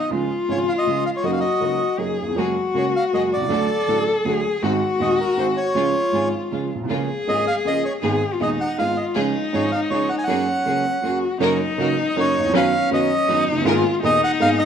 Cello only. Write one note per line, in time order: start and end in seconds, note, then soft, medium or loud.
0.00 0.11 D#4 medium
0.11 1.25 F4 medium
1.23 2.00 F#4 medium
1.99 2.39 G#4 medium
2.38 3.50 F#4 medium
3.50 4.27 A4 medium
4.25 4.64 G#4 medium
4.62 5.78 F#4 medium
5.76 6.70 F4 medium
6.89 7.98 G#4 medium
8.03 8.34 G#4 medium
8.33 8.42 F4 medium
8.41 8.80 D#4 medium
8.79 9.18 F4 medium
9.16 10.31 D#4 medium
10.29 11.04 C#4 medium
11.04 11.39 F#4 medium
11.42 12.55 D#4 medium
12.54 13.30 C#4 medium
13.29 13.67 D#4 medium
13.65 14.02 F4 loud
14.03 14.65 D#4 loud